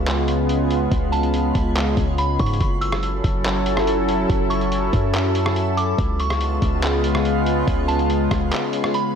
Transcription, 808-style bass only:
0.00 0.88 C#2 loud
0.91 1.52 C#2 loud
1.55 1.96 C#2 loud
1.97 2.38 C#2 loud
2.40 2.60 G#2 loud
2.60 3.21 F#1 loud
3.24 4.26 F#1 loud
4.30 4.90 F#1 loud
4.93 5.95 F#2 loud
5.98 6.59 C#2 loud
6.62 7.64 C#2 loud
7.67 8.28 C#2 loud
8.31 8.51 C#2 loud

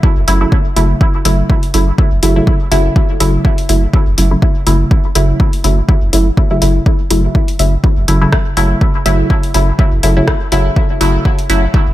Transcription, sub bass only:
0.17 0.24 F#1 medium
0.28 0.46 F#1 medium
0.76 0.94 F#1 medium
1.25 1.43 F#1 loud
1.74 1.92 F#1 loud
2.12 2.20 F#1 medium
2.23 2.41 F#1 medium
2.72 2.89 F#1 medium
3.20 3.38 F#1 loud
3.69 3.87 F#1 loud
4.07 4.15 F#1 medium
4.18 4.36 F#1 medium
4.67 4.85 F#1 medium
5.16 5.33 F#1 loud
5.64 5.82 F#1 loud
6.02 6.10 F#1 medium
6.13 6.31 F#1 medium
6.62 6.80 F#1 medium
7.11 7.28 F#1 loud
7.59 7.77 F#1 loud
7.97 8.05 F#1 medium
8.08 8.26 F#1 medium
8.57 8.75 F#1 medium
9.06 9.24 F#1 loud
9.54 9.72 F#1 loud
9.92 10.00 F#1 medium
10.03 10.21 F#1 medium
10.52 10.70 F#1 medium
11.01 11.19 F#1 loud
11.49 11.67 F#1 medium
11.87 11.94 F#1 medium

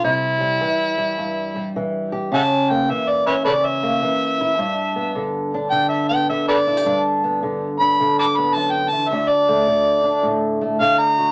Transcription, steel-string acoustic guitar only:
0.04 0.61 C3 medium
0.04 0.40 G3 medium
0.40 0.97 G3 soft
0.61 1.74 E3 medium
0.98 1.55 G3 medium
1.18 2.29 G2 medium
1.56 2.70 G3 medium
1.76 2.30 E3 medium
2.12 2.35 G4 medium
2.32 2.88 C#3 medium
2.32 3.25 C#4 medium
2.70 3.82 A#3 medium
2.89 4.01 E3 medium
3.26 4.56 C#4 medium
3.46 4.02 C#3 medium
3.83 4.56 A#3 medium
4.02 4.56 E3 medium
4.41 4.59 E4 medium
4.58 6.82 G2 medium
4.58 5.54 D4 medium
4.96 6.08 B3 medium
5.15 5.71 D3 medium
5.54 6.86 D4 medium
5.72 6.28 D3 medium
6.11 6.83 B3 medium
6.30 7.42 D3 medium
6.67 6.77 E4 medium
6.77 6.86 G4 medium
6.85 8.55 G2 medium
6.85 7.80 D4 medium
7.24 8.36 B3 medium
7.43 8.00 D3 medium
7.81 9.12 D4 medium
8.00 9.10 D3 medium
8.38 9.10 B3 medium
8.56 8.92 F#2 medium
8.92 9.11 E2 medium
9.11 11.32 D2 medium
9.11 10.03 D4 medium
9.48 10.61 A3 medium
9.67 10.80 D3 medium
10.04 11.32 D4 medium
10.23 10.80 A2 medium
10.61 11.32 A3 medium
10.80 11.32 D3 medium
11.18 11.32 F#4 medium

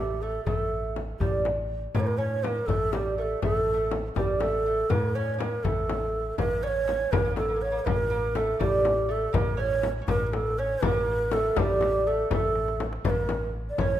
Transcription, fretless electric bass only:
0.00 0.38 A1 medium
0.46 1.12 A1 medium
1.20 1.86 A1 medium
1.94 2.61 A2 medium
2.68 3.34 A1 medium
3.43 4.09 A1 medium
4.16 4.83 A1 medium
4.90 5.57 A2 medium
5.64 6.31 A1 medium
6.38 7.05 A1 medium
7.12 7.79 A1 medium
7.87 8.53 A1 medium
8.60 9.27 A1 medium
9.34 10.01 A1 loud
10.09 10.75 A1 medium
10.83 11.49 A1 loud
11.57 12.23 A1 loud
12.31 12.97 A1 loud
13.04 13.71 A1 medium
13.79 14.00 A1 loud

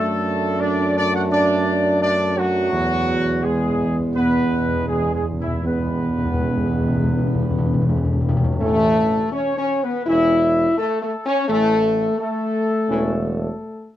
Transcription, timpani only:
2.73 2.79 E2 soft
2.80 2.86 E2 soft
2.88 2.93 E2 soft
2.95 3.01 E2 soft
3.02 3.08 E2 soft
3.10 3.16 E2 soft
3.17 3.23 E2 soft
3.25 3.31 E2 soft
3.32 3.39 E2 soft
3.40 3.45 E2 soft
3.47 3.53 E2 soft
3.54 3.61 E2 soft
3.62 3.68 E2 soft
3.69 3.76 E2 soft
3.77 3.83 E2 soft
3.84 3.91 E2 soft
3.92 3.98 E2 soft
3.99 4.06 E2 soft
4.07 4.13 E2 soft
4.15 4.21 E2 soft
4.22 4.29 E2 medium
4.30 4.36 E2 soft
4.37 4.44 E2 soft
4.45 4.51 E2 soft
4.53 4.60 E2 soft
4.61 4.67 E2 soft
4.68 4.74 E2 medium
4.75 4.82 E2 medium
4.83 4.90 E2 medium
4.91 4.98 E2 soft
4.99 5.06 E2 medium
5.07 5.13 E2 medium
5.15 5.22 E2 soft
5.23 5.30 E2 soft
5.31 5.38 E2 medium
5.39 5.46 E2 medium
5.47 5.54 E2 medium
5.55 5.62 E2 medium
5.63 5.70 E2 medium
5.71 5.78 E2 medium
5.79 5.85 E2 medium
5.87 5.93 E2 medium
5.94 6.01 E2 medium
6.02 6.08 E2 medium
6.09 6.16 E2 medium
6.18 6.24 E2 medium
6.25 6.33 E2 medium
6.34 6.40 E2 medium
6.42 6.48 E2 medium
6.49 6.56 E2 medium
6.57 6.64 E2 medium
6.65 6.72 E2 medium
6.73 6.79 E2 medium
6.80 6.87 E2 medium
6.88 6.95 E2 medium
6.96 7.02 E2 medium
7.04 7.10 E2 medium
7.11 7.18 E2 medium
7.19 7.25 E2 medium
7.27 7.33 E2 medium
7.35 7.41 E2 medium
7.42 7.50 E2 medium
7.51 7.57 E2 medium
7.59 7.65 E2 medium
7.66 7.73 E2 medium
7.74 7.81 E2 medium
7.82 7.88 E2 medium
7.89 7.95 E2 medium
7.97 8.04 E2 medium
8.05 8.12 E2 medium
8.13 8.20 E2 medium
8.21 8.28 E2 medium
8.29 8.36 E2 loud
8.37 8.43 E2 loud
8.44 8.51 E2 loud
8.52 8.59 E2 medium
8.61 9.66 A2 medium

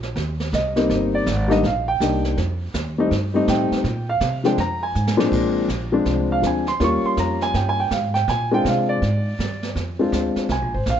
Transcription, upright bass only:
0.00 0.15 A#1 medium
0.16 0.52 D#2 medium
0.53 0.89 C2 medium
0.89 1.25 G1 medium
1.26 1.62 G#1 medium
1.63 1.99 A#1 medium
2.00 2.36 C2 medium
2.37 2.73 F2 medium
2.74 3.10 D#2 medium
3.11 3.47 G2 medium
3.48 3.70 A2 medium
3.71 muted upright bass stroke soft
3.84 4.20 A#2 medium
4.20 4.57 C3 medium
4.58 4.94 F2 medium
4.95 5.31 G#2 medium
5.32 5.68 A#2 medium
5.68 6.05 A#1 medium
6.06 6.42 C2 medium
6.43 6.79 D2 medium
6.80 7.02 D#2 medium
7.03 muted upright bass stroke soft
7.17 7.53 F2 medium
7.54 7.90 G2 medium
7.91 8.27 G#2 medium
8.28 8.64 A#2 medium
8.65 9.01 C3 medium
9.02 9.38 G#2 medium
9.39 9.75 G2 medium
9.76 10.12 F2 medium
10.12 10.35 D2 medium
10.36 muted upright bass stroke soft
10.49 10.61 C2 medium
10.61 10.74 A#1 medium
10.74 10.85 G#1 medium
10.86 11.00 A#1 medium

